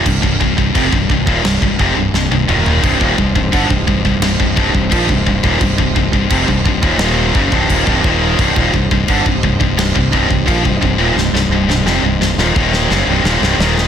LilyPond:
<<
  \new Staff \with { instrumentName = "Pipe organ" } { \time 4/4 \key c \minor \tempo 4 = 86 r1 | <g ees' c''>1~ | <g ees' c''>1~ | <g ees' c''>1~ |
<g ees' c''>1 | }
  \new Staff \with { instrumentName = "Distorted electric guitar" } { \clef bass \time 4/4 \key c \minor <c, g,>16 <c, g,>16 <c, g,>16 <c, g,>16 <f, c>16 <c, g,>16 <c, g,>16 <ees, bes,>16 <c, g,>16 <c, g,>16 <f, c>16 <c, g,>16 <c, g,>16 <c, g,>16 <ees, bes, ees>8 | <c, g,>16 <ees, bes,>16 <c, g,>16 <c, g,>16 <g, d>16 <c, g,>16 <c, g,>16 <c, g,>16 <c, g,>16 <c, g,>16 <c, g,>16 <c, g,>16 <bes, f>16 <c, g,>16 <c, g,>16 <ees, bes,>16 | <c, g,>16 <c, g,>16 <c, g,>16 <c, g,>16 <f, c>16 <c, g,>16 <c, g,>16 <ees, bes,>16 <ees, bes, ees>8 <fis, des>16 <c, g,>16 <ees, bes,>16 <c, g,>16 <ees, bes, ees>8 | <c, g,>16 <ees, bes,>16 <c, g,>16 <c, g,>16 <g, d>16 <c, g,>16 <c, g,>16 <c, g,>16 <c, g,>16 <c, g,>16 <c, g,>16 <c, g,>16 <bes, f>16 <c, g,>16 <c, g,>16 <ees, bes,>16 |
<c, g,>16 <c, g,>16 <c, g,>16 <c, g,>16 <f, c>16 <c, g,>16 <c, g,>16 <ees, bes,>16 <ees, bes, ees>8 <fis, des>16 <c, g,>16 <ees, bes,>16 <c, g,>16 <ees, bes, ees>8 | }
  \new Staff \with { instrumentName = "Distorted electric guitar" } { \clef bass \time 4/4 \key c \minor <c, g,>16 <c, g,>16 <c, g,>16 <c, g,>16 <f, c>16 <c, g,>16 <c, g,>16 <ees, bes,>16 <c, g,>16 <c, g,>16 <f, c>16 <c, g,>16 <c, g,>16 <c, g,>16 <ees, bes, ees>8 | <c, g,>16 <ees, bes,>16 <c, g,>16 <c, g,>16 <g, d>16 <c, g,>16 <c, g,>16 <c, g,>16 <c, g,>16 <c, g,>16 <c, g,>16 <c, g,>16 <bes, f>16 <c, g,>16 <c, g,>16 <ees, bes,>16 | <c, g,>16 <c, g,>16 <c, g,>16 <c, g,>16 <f, c>16 <c, g,>16 <c, g,>16 <ees, bes,>16 <ees, bes, ees>8 <fis, des>16 <c, g,>16 <ees, bes,>16 <c, g,>16 <ees, bes, ees>8 | <c, g,>16 <ees, bes,>16 <c, g,>16 <c, g,>16 <g, d>16 <c, g,>16 <c, g,>16 <c, g,>16 <c, g,>16 <c, g,>16 <c, g,>16 <c, g,>16 <bes, f>16 <c, g,>16 <c, g,>16 <ees, bes,>16 |
<c, g,>16 <c, g,>16 <c, g,>16 <c, g,>16 <f, c>16 <c, g,>16 <c, g,>16 <ees, bes,>16 <ees, bes, ees>8 <fis, des>16 <c, g,>16 <ees, bes,>16 <c, g,>16 <ees, bes, ees>8 | }
  \new Staff \with { instrumentName = "Fingered electric bass" } { \clef bass \time 4/4 \key c \minor c,,16 c,,16 c,,16 c,,16 f,,16 c,,16 c,,16 ees,,16 c,,16 c,,16 f,,16 c,,16 c,,16 c,,16 ees,,8 | c,,16 ees,,16 c,,16 c,,16 g,,16 c,,16 c,,16 c,,16 c,,16 c,,16 c,,16 c,,16 bes,,16 c,,16 c,,16 ees,,16 | c,,16 c,,16 c,,16 c,,16 f,,16 c,,16 c,,16 ees,,16 ees,,8 fis,,16 c,,16 ees,,16 c,,16 ees,,8 | c,,16 ees,,16 c,,16 c,,16 g,,16 c,,16 c,,16 c,,16 c,,16 c,,16 c,,16 c,,16 bes,,16 c,,16 c,,16 ees,,16 |
c,,16 c,,16 c,,16 c,,16 f,,16 c,,16 c,,16 ees,,16 ees,,8 fis,,16 c,,16 ees,,16 c,,16 ees,,8 | }
  \new DrumStaff \with { instrumentName = "Drums" } \drummode { \time 4/4 <cymc bd>16 bd16 bd16 bd16 <cymc bd>16 bd16 bd16 bd16 <cymc sn>16 bd16 bd8 sn16 tommh16 toml16 tomfh16 | <cymc bd>16 bd16 bd16 bd16 <cymc bd>16 bd16 bd16 bd16 <cymc sn>16 bd16 bd16 bd16 <cymc bd>16 bd16 bd16 bd16 | <cymc bd>16 bd16 bd16 bd16 <cymc bd>16 bd16 bd16 bd16 <cymc sn>8 bd16 bd16 <cymc bd>16 bd16 bd8 | <cymc bd>16 bd16 bd16 bd16 <cymc bd>16 bd16 bd16 bd16 <cymc sn>16 bd16 bd16 bd16 <cymc bd>16 bd16 bd8 |
sn16 sn8 sn16 sn8 sn16 sn16 bd16 sn16 sn8 sn16 sn16 sn16 sn16 | }
>>